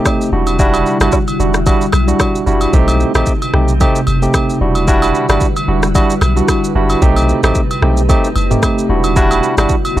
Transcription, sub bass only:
0, 0, Header, 1, 2, 480
1, 0, Start_track
1, 0, Key_signature, 1, "minor"
1, 0, Tempo, 535714
1, 530, Time_signature, 4, 2, 24, 8
1, 8960, End_track
2, 0, Start_track
2, 0, Title_t, "Sub bass"
2, 0, Program_c, 0, 38
2, 290, Note_on_c, 0, 28, 100
2, 751, Note_off_c, 0, 28, 0
2, 902, Note_on_c, 0, 31, 88
2, 983, Note_off_c, 0, 31, 0
2, 1251, Note_on_c, 0, 28, 92
2, 1531, Note_off_c, 0, 28, 0
2, 1731, Note_on_c, 0, 35, 87
2, 1911, Note_off_c, 0, 35, 0
2, 2211, Note_on_c, 0, 30, 87
2, 2391, Note_off_c, 0, 30, 0
2, 2450, Note_on_c, 0, 35, 104
2, 2730, Note_off_c, 0, 35, 0
2, 2822, Note_on_c, 0, 33, 83
2, 2903, Note_off_c, 0, 33, 0
2, 3169, Note_on_c, 0, 35, 90
2, 3450, Note_off_c, 0, 35, 0
2, 3651, Note_on_c, 0, 30, 90
2, 3831, Note_off_c, 0, 30, 0
2, 4130, Note_on_c, 0, 28, 96
2, 4591, Note_off_c, 0, 28, 0
2, 4742, Note_on_c, 0, 31, 88
2, 4823, Note_off_c, 0, 31, 0
2, 5090, Note_on_c, 0, 28, 90
2, 5370, Note_off_c, 0, 28, 0
2, 5569, Note_on_c, 0, 35, 90
2, 5750, Note_off_c, 0, 35, 0
2, 6051, Note_on_c, 0, 30, 92
2, 6231, Note_off_c, 0, 30, 0
2, 6290, Note_on_c, 0, 35, 102
2, 6570, Note_off_c, 0, 35, 0
2, 6661, Note_on_c, 0, 33, 86
2, 6743, Note_off_c, 0, 33, 0
2, 7009, Note_on_c, 0, 35, 94
2, 7289, Note_off_c, 0, 35, 0
2, 7488, Note_on_c, 0, 30, 90
2, 7670, Note_off_c, 0, 30, 0
2, 7969, Note_on_c, 0, 28, 97
2, 8430, Note_off_c, 0, 28, 0
2, 8581, Note_on_c, 0, 31, 86
2, 8662, Note_off_c, 0, 31, 0
2, 8929, Note_on_c, 0, 28, 86
2, 8960, Note_off_c, 0, 28, 0
2, 8960, End_track
0, 0, End_of_file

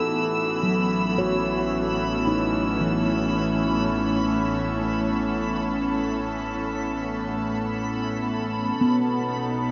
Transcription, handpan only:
0, 0, Header, 1, 2, 480
1, 0, Start_track
1, 0, Tempo, 1090909
1, 33, Time_signature, 4, 2, 24, 8
1, 4275, End_track
2, 0, Start_track
2, 0, Title_t, "Handpan"
2, 0, Program_c, 0, 114
2, 0, Note_on_c, 0, 63, 54
2, 0, Note_on_c, 0, 69, 46
2, 278, Note_on_c, 0, 54, 54
2, 520, Note_on_c, 0, 66, 55
2, 521, Note_on_c, 0, 73, 56
2, 610, Note_off_c, 0, 69, 0
2, 611, Note_off_c, 0, 63, 0
2, 999, Note_on_c, 0, 63, 46
2, 1093, Note_off_c, 0, 66, 0
2, 1234, Note_on_c, 0, 52, 49
2, 1332, Note_off_c, 0, 54, 0
2, 1511, Note_off_c, 0, 73, 0
2, 1991, Note_off_c, 0, 63, 0
2, 2228, Note_off_c, 0, 52, 0
2, 3877, Note_on_c, 0, 59, 58
2, 4275, Note_off_c, 0, 59, 0
2, 4275, End_track
0, 0, End_of_file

